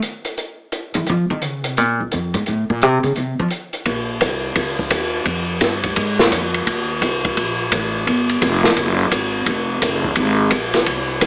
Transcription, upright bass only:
0.95 E3
1.09 F3
1.30 D#3
1.44 C#3
1.64 C3
1.78 A#2
2.00 C#2
2.13 F2
2.34 G#2
2.48 A2
2.70 A#2
2.83 C3
3.03 C#3
3.17 C3
3.39 F3
3.86 A#1
4.21 C2
4.56 C#2
4.91 D#2
5.25 F2
5.61 G2
5.97 G#2
6.31 F2
6.67 D#2
7.01 C2
7.37 A#1
7.72 A1
8.07 G1
8.42 F1
8.76 F#1
9.11 G#1
9.46 F1
9.82 F#1
10.17 G#1
10.51 A#1
10.87 C2
11.21 D#2

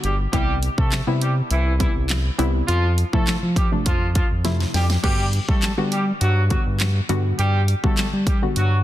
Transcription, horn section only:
0.04 G3 G4
0.33 G3 G4
0.78 A3 A4
1.21 G3 G4
1.50 E3 E4
1.80 E3 E4
2.68 F3 F4
3.13 A3 A4
3.57 G3 G4
3.86 F3 F4
4.15 F3 F4
4.74 G3 G4
5.03 G3 G4
5.49 A3 A4
5.92 G3 G4
6.21 F#3 F#4
6.51 F#3 F#4
7.39 G3 G4
7.84 A3 A4
8.27 G3 G4
8.57 F#3 F#4

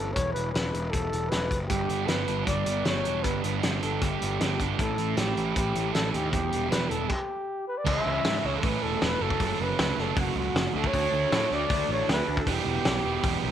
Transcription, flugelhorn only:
Already playing: A4
0.14 C#5
0.33 B4
0.52 B4
0.91 A4
1.29 B4
1.68 G4
2.07 B4
2.47 D5
2.85 C#5
3.23 B4
3.83 A4
4.03 G4
4.79 A4
5.18 G4
5.57 G4
5.94 A4
6.13 G4
6.32 G4
6.71 B4
6.89 A4
7.09 G4
7.68 B4
7.78 D5
7.88 E5
8.46 C#5
8.58 A4
8.65 B4
8.83 A4
9.03 B4
9.22 A4
9.62 B4
10.01 A4
10.19 F#4
10.37 F#4
10.76 A4
10.87 C#5
11.54 D5
11.92 C#5
12.12 B4
12.41 A4
12.49 G4

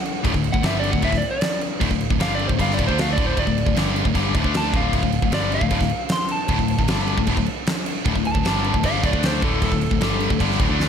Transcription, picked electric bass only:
0.25 D1
0.34 D1
0.54 D1
0.63 G1
0.93 D1
1.03 D1
1.13 D1
1.81 D1
1.91 D1
2.10 D1
2.20 G1
2.50 D1
2.59 G1
2.79 D1
2.89 D2
3.18 D1
3.37 D1
3.47 D1
3.66 D1
3.76 G1
4.05 D1
4.15 G1
4.35 D1
4.45 D2
4.73 D1
4.93 D1
5.03 D1
5.22 D1
5.32 G1
5.61 D1
5.71 D1
5.81 D1
6.49 D1
6.59 D1
6.79 D1
6.89 G1
7.18 D1
7.27 D1
7.37 D1
8.06 D1
8.16 D1
8.35 D1
8.45 G1
8.74 D1
8.84 G1
9.03 D1
9.13 D2
9.43 D1
9.62 D1
9.72 D1
9.91 D1
10.01 G1
10.31 D1
10.40 G1
10.60 D1
10.69 D2

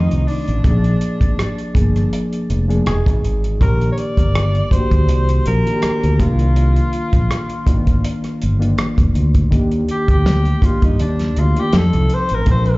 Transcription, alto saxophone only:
Already playing: D#4
0.28 D4
3.62 A#4
3.92 C#5
3.99 D5
4.72 C5
5.47 A#4
6.21 F4
9.91 G4
10.11 G4
10.65 F4
10.84 D#4
11.02 D4
11.40 F4
11.59 G4
11.77 A4
12.14 C5
12.34 A#4
12.51 C5

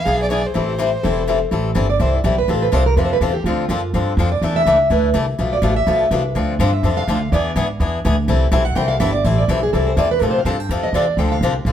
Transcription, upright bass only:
0.06 B1
0.55 A1
1.04 E1
1.51 A1
1.75 G1
2.00 C2
2.24 B1
2.48 A1
2.72 C2
2.96 F2
3.21 E2
3.44 D2
3.69 F#2
3.94 G2
4.17 F2
4.42 E2
4.65 C#2
4.90 D2
5.14 C2
5.39 B1
5.62 A1
5.87 B1
6.11 C2
6.35 D2
6.59 G2
6.83 F2
7.08 D2
7.32 E2
7.56 G#2
7.80 E2
8.05 D2
8.28 C2
8.52 B1
8.76 C2
9.00 G1
9.25 A1
9.48 B1
9.73 C2
9.97 E2
10.21 A2
10.45 G2
10.69 F2
10.93 E2
11.17 D2
11.41 C2
11.65 B1

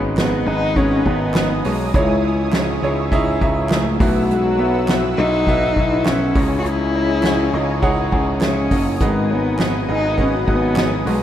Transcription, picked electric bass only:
Already playing: G#1
0.47 G#1
1.06 G#1
1.65 B1
1.94 C#2
2.82 C#2
3.42 C#2
4.01 B1
5.18 B1
5.77 B1
6.36 C#2
6.64 C#2
7.53 C#2
8.13 C#2
8.71 F#1
9.01 G#1
9.89 G#1
10.48 G#1
11.06 B1

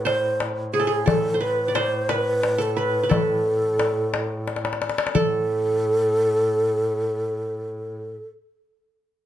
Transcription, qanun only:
Already playing: A4 B4
0.05 C5
0.74 G#4
0.80 A4
0.87 G#4
1.06 A4
1.34 C5
1.41 B4
1.68 D5
1.75 C5
2.09 B4
2.58 A4
2.77 B4
3.03 B4
3.09 A4
5.15 A4

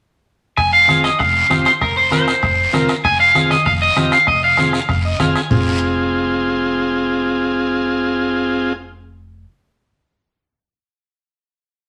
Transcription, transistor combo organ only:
0.88 C4 F4 G#4
1.50 C4 F4 G4
2.11 C4 F4 A#4
2.73 C4 F4 A#4
3.35 C4 F4 G#4
3.96 C4 F4 G4
4.58 C4 F4 G#4
5.05 D#5
5.19 C4 F4 G#4 F5
5.35 G#5
5.50 C4 F4 G#4

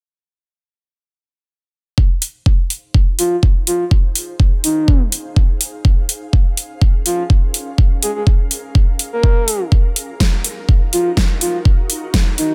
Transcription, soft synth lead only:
3.19 F4
3.67 F4
4.64 D#4
7.06 F4
8.03 G#4
8.16 G#4
9.13 A#4
10.93 F4
11.41 F4
12.38 D#4

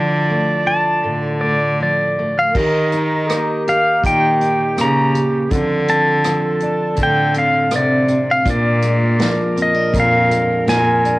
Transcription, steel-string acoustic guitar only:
Already playing: D3 F3 A3 E4 F4
0.30 A3
0.67 F4
1.04 A2
1.43 A3
1.80 F3
2.19 A3
2.55 D#3 G4
2.94 D#4
3.30 A#3
3.68 G4
4.05 A#2
4.41 D#4
4.77 A#3
5.14 G4
5.50 D3 F3 C4 D4 F4
5.88 C4
6.26 F3
6.63 D4
6.98 A2
7.35 C4
7.71 D3
8.09 C3
8.45 A#2 D4
8.83 G#3
9.19 F3
9.56 C4
9.74 D4
9.92 F2
10.29 G#3
10.67 F3
11.05 D4

